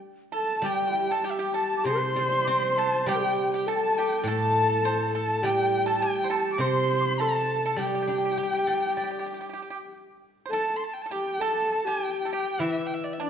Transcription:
0.00 0.34 A4 soft
0.00 0.65 D5 soft
0.32 0.61 A4 medium
0.32 0.64 A4 medium
0.32 0.65 A5 medium
0.32 0.67 A5 medium
0.62 2.15 G3 medium
0.62 1.23 G4 medium
0.62 0.93 G4 medium
0.62 1.23 G5 medium
0.62 1.13 G5 loud
0.93 1.06 E4 medium
1.11 1.24 A4 medium
1.11 1.26 A5 medium
1.23 1.86 G4 medium
1.23 1.37 G4 medium
1.23 1.37 G5 medium
1.23 1.32 G5 medium
1.30 1.41 E5 medium
1.38 1.54 G4 medium
1.38 1.57 G5 medium
1.38 1.56 G5 medium
1.54 1.83 A4 medium
1.54 1.76 A5 medium
1.54 1.87 A5 medium
1.77 1.86 D6 medium
1.84 3.66 C3 soft
1.84 3.09 C5 medium
1.84 2.43 C5 medium
1.84 2.43 C6 medium
1.84 2.81 C6 loud
2.16 3.05 G3 soft
2.44 3.67 C4 soft
2.44 2.75 C5 medium
2.44 2.50 D6 medium
2.49 3.09 C6 medium
2.78 3.05 A4 medium
2.78 3.07 A5 medium
3.06 4.83 G3 medium
3.06 3.68 G4 medium
3.06 3.49 G4 medium
3.06 3.52 G5 medium
3.06 3.49 G5 medium
3.53 3.67 G4 medium
3.53 3.70 G5 medium
3.66 4.24 A4 medium
3.66 3.94 A4 medium
3.66 3.99 A5 medium
3.66 3.77 A5 medium
3.75 3.83 G5 medium
3.81 4.25 A5 medium
3.98 4.24 G4 medium
3.98 4.29 G5 medium
4.24 6.00 A2 medium
4.24 5.44 A4 medium
4.24 5.13 A5 loud
4.28 4.81 A4 medium
4.28 5.15 A5 loud
4.85 5.12 C5 medium
5.15 5.42 A4 medium
5.15 5.46 A5 loud
5.42 7.20 G3 medium
5.42 6.01 G4 medium
5.42 5.84 G4 medium
5.42 5.88 G5 medium
5.42 5.89 G5 medium
5.86 6.00 A4 medium
5.86 6.02 A5 medium
5.86 6.03 A5 medium
6.00 6.62 G4 medium
6.00 6.23 G4 medium
6.00 6.33 G5 medium
6.00 6.32 G5 loud
6.24 6.29 C5 medium
6.30 6.58 A4 medium
6.30 6.52 A5 medium
6.30 6.37 C6 medium
6.36 6.59 A5 medium
6.53 6.63 D6 medium
6.58 8.37 C3 medium
6.58 7.16 C5 medium
6.58 7.23 C5 medium
6.58 6.98 C6 loud
6.58 7.21 C6 loud
7.00 7.21 C6 medium
7.00 7.05 D6 medium
7.19 7.61 A4 medium
7.19 7.80 A4 medium
7.19 7.79 A5 medium
7.19 7.78 A5 loud
7.66 7.78 A4 medium
7.76 9.58 G3 medium
7.76 9.90 G4 medium
7.76 7.85 G4 medium
7.76 9.90 G5 medium
7.76 9.87 G5 medium
7.87 7.93 G4 soft
7.95 8.01 G4 medium
8.02 8.08 G4 soft
8.07 9.27 D4 soft
8.07 8.15 G4 soft
8.18 8.23 G4 soft
8.25 8.30 G4 soft
8.32 8.36 G4 soft
8.37 9.59 G4 soft
8.37 8.42 G4 soft
8.43 8.50 G4 soft
8.53 8.57 G4 soft
8.58 8.65 G4 soft
8.67 8.72 G4 soft
8.67 9.90 A4 soft
8.74 8.79 G4 soft
8.80 8.87 G4 soft
8.89 8.95 G4 soft
8.97 9.03 G4 soft
8.97 10.21 D5 soft
9.04 9.10 G4 soft
9.11 9.17 G4 soft
9.19 9.25 G4 soft
9.26 9.32 G4 soft
9.34 9.39 G4 soft
9.41 9.47 G4 soft
9.49 9.52 G4 soft
9.53 9.61 G4 medium
9.62 9.69 G4 soft
9.70 9.78 G4 soft
10.46 10.52 C5 soft
10.50 10.74 A4 medium
10.50 10.75 A4 medium
10.50 10.78 A5 medium
10.76 10.85 C6 medium
10.84 10.95 A5 medium
10.93 11.03 G5 medium
11.02 11.04 A5 medium
11.02 11.12 A5 medium
11.06 11.11 A4 soft
11.11 11.40 G4 medium
11.11 11.41 G4 medium
11.11 11.42 G5 medium
11.40 11.87 A4 medium
11.40 11.83 A4 medium
11.40 11.88 A5 medium
11.86 12.61 G4 medium
11.86 12.22 G4 medium
11.86 12.31 G5 medium
12.25 12.32 A4 medium
12.32 12.60 G4 medium
12.32 12.62 G5 medium
12.59 13.30 E3 medium
12.59 12.85 E4 medium
12.59 12.83 E4 medium
12.59 12.88 E5 medium
12.86 12.96 G5 medium
12.94 13.05 E5 medium
13.04 13.14 D5 medium
13.13 13.21 E5 medium
13.20 13.30 D4 medium
13.20 13.30 D5 medium

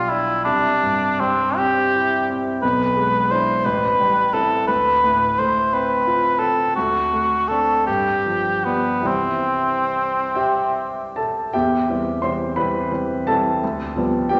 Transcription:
0.00 0.43 B1 soft
0.00 0.49 B2 soft
0.00 0.49 G3 soft
0.00 0.11 D4 soft
0.00 0.11 F4 medium
0.00 0.33 G4 soft
0.09 0.46 D4 soft
0.09 0.44 E4 medium
0.44 2.58 C2 soft
0.44 1.21 D4 medium
0.83 1.44 G2 soft
1.20 1.81 G3 soft
1.20 1.58 C4 medium
1.57 2.16 C4 soft
1.57 2.35 G4 medium
1.95 2.49 E4 soft
2.30 2.63 C4 soft
2.62 3.61 B1 soft
2.62 3.32 B4 medium
2.96 3.50 G#3 soft
3.30 3.61 D4 soft
3.30 3.61 E4 soft
3.30 3.66 C5 medium
3.65 4.66 A1 soft
3.65 4.36 B4 medium
4.00 4.55 G3 soft
4.33 4.64 C4 soft
4.33 4.65 E4 soft
4.33 4.67 A4 medium
4.67 6.71 D2 soft
4.67 5.40 B4 medium
5.04 5.59 A2 soft
5.38 5.93 A3 soft
5.38 5.75 C5 medium
5.73 6.27 C4 soft
5.73 6.41 B4 medium
6.07 6.62 F4 soft
6.39 6.76 C4 soft
6.39 6.75 A4 medium
6.76 7.85 D2 soft
6.76 7.49 F#4 medium
7.13 7.73 A3 soft
7.48 7.84 C4 soft
7.48 7.84 D4 soft
7.48 7.86 A4 medium
7.87 9.03 G2 soft
7.87 8.66 G4 medium
8.26 8.89 F3 soft
8.65 9.08 B3 soft
8.65 9.02 B3 soft
8.65 9.03 D4 soft
9.01 11.47 C2 soft
9.01 11.48 E3 soft
9.01 11.48 G3 soft
9.01 11.49 C4 soft
9.06 11.17 C4 medium
10.35 11.13 G4 soft
10.35 11.13 E5 soft
10.35 11.17 G5 medium
11.16 11.51 A4 soft
11.16 11.53 A5 soft
11.53 11.87 E2 soft
11.53 12.19 G4 soft
11.53 12.19 E5 soft
11.53 12.22 G5 medium
11.89 12.20 E3 soft
11.89 12.20 G3 soft
11.89 12.20 C4 soft
12.22 12.54 E3 soft
12.22 12.55 G3 soft
12.22 12.55 C4 soft
12.22 12.55 C5 soft
12.22 12.57 C6 medium
12.56 12.89 E3 soft
12.56 12.89 G3 soft
12.56 12.90 C4 soft
12.56 13.23 B4 soft
12.56 13.26 B5 medium
12.92 13.23 E3 soft
12.92 13.23 G3 soft
12.92 13.24 C4 soft
13.27 13.59 E3 soft
13.27 13.60 G3 soft
13.27 13.60 C4 soft
13.27 14.27 A4 soft
13.27 14.30 A5 medium
13.63 13.96 D2 soft
13.96 14.27 F3 soft
13.96 14.27 G3 soft
13.96 14.28 B3 soft
14.29 14.40 F3 soft
14.29 14.40 G3 soft
14.29 14.40 B3 soft
14.29 14.40 G4 soft
14.29 14.40 G5 medium

